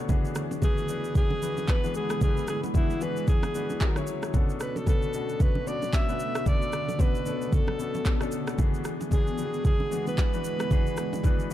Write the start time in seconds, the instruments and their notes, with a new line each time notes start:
Already playing: grand piano B2 B3 D4 A4 B4 C#5, ambient pad D3
0.09 grand piano E3 B3 D4 F#4 G#4, ambient pad G#3 B3 E4, kick, low conga, shaker
0.25 shaker
0.35 cross-stick, shaker
0.51 low bongo, shaker
0.62 grand piano E3 B3 D4 F#4 B4, alto saxophone G#4, kick, high bongo, low conga, shaker
0.78 shaker
0.88 grand piano E3 B3 D4 F#4 B4, shaker
1.04 shaker
1.15 alto saxophone G#4, kick, low conga, shaker
1.30 low bongo
1.42 grand piano E3 B3 D4 F#4 B4, shaker
1.57 low bongo, shaker
1.68 alto saxophone B4, kick, clap, high bongo, shaker
1.84 grand piano E3 B3 D4 F#4 G#4, shaker
1.94 alto saxophone G#4, shaker
2.10 cross-stick, high bongo, shaker
2.21 grand piano E3 B3 D4 F#4 A4, alto saxophone G#4, kick, low conga, shaker
2.29 grand piano B4
2.37 shaker
2.47 alto saxophone G#4, cross-stick, low bongo, shaker
2.64 low bongo, shaker
2.74 grand piano E3 B3 D4 F#4 G#4, alto saxophone E4, kick, high bongo, low conga, shaker
2.90 shaker
3.01 grand piano E3 B3 D4 F#4 G#4, alto saxophone B4, shaker
3.17 shaker
3.28 alto saxophone G#4, kick, low conga, shaker
3.43 cross-stick, low bongo, shaker
3.54 grand piano E3 B3 D4 F#4 B4, shaker
3.70 low bongo, shaker
3.80 grand piano F#3 C#4 E4 G#4 A#4, ambient pad F#4, kick, clap, high bongo, shaker
3.96 grand piano F#3 C#4 E4 G#4 C#5, cross-stick, shaker
4.07 shaker
4.22 cross-stick, high bongo, shaker
4.33 grand piano B2 B3 C#4 D4 A4, ambient pad D3 A3 B3, kick, low conga, shaker
4.49 shaker
4.60 alto saxophone B4, cross-stick, shaker
4.76 alto saxophone A4, low bongo, shaker
4.86 grand piano B2 B3 C#4 D4 B4, alto saxophone A4, kick, high bongo, low conga, shaker
5.02 shaker
5.13 grand piano B2 B3 C#4 D4 F#4, shaker
5.29 shaker
5.40 alto saxophone B4, kick, low conga, shaker
5.55 low bongo
5.67 grand piano B2 B3 C#4 D4 F#4, alto saxophone D5, shaker
5.82 low bongo, shaker
5.93 alto saxophone E5, kick, clap, high bongo, shaker
6.09 grand piano B2 B3 C#4 D4 B4, shaker
6.19 shaker
6.35 cross-stick, high bongo, shaker
6.46 grand piano B2 A3 B3 D4 A4, alto saxophone D5, kick, low conga, shaker
6.62 shaker
6.72 cross-stick, shaker
6.88 low bongo, shaker
6.99 grand piano B2 B3 C#4 D4 F#4, alto saxophone B4, kick, high bongo, low conga, shaker
7.15 shaker
7.26 grand piano B2 B3 C#4 D4 A4, shaker
7.42 shaker
7.53 alto saxophone A4, kick, low conga, shaker
7.67 cross-stick, low bongo
7.79 grand piano B2 B3 C#4 D4 A4, shaker
7.94 low bongo, shaker
8.05 kick, clap, high bongo, shaker
8.21 grand piano B2 B3 C#4 D4 A4, cross-stick, shaker
8.32 shaker
8.47 cross-stick, high bongo, shaker
8.58 grand piano E3 B3 D4 F#4 G#4, ambient pad G#3 E4, kick, low conga, shaker
8.74 shaker
8.84 cross-stick, shaker
9.01 low bongo, shaker
9.11 grand piano E3 B3 D4 F#4 G#4, alto saxophone G#4, kick, high bongo, low conga, shaker
9.27 shaker
9.38 grand piano E3 B3 D4 F#4 G4, shaker
9.46 grand piano G#4
9.54 shaker
9.65 alto saxophone G#4, kick, low conga, shaker
9.80 low bongo
9.91 grand piano E3 B3 D4 F#4 G#4, shaker
10.07 alto saxophone B4, low bongo, shaker
10.18 kick, clap, high bongo, shaker
10.33 grand piano E3 B3 D4 F#4 B4, shaker
10.44 shaker
10.59 cross-stick, high bongo, shaker
10.71 grand piano E3 B3 D4 F#4 G#4, kick, low conga, shaker
10.87 shaker
10.97 cross-stick, shaker
11.13 low bongo, shaker
11.23 grand piano E3 B3 D4 F#4 B4, kick, high bongo, low conga, shaker
11.40 shaker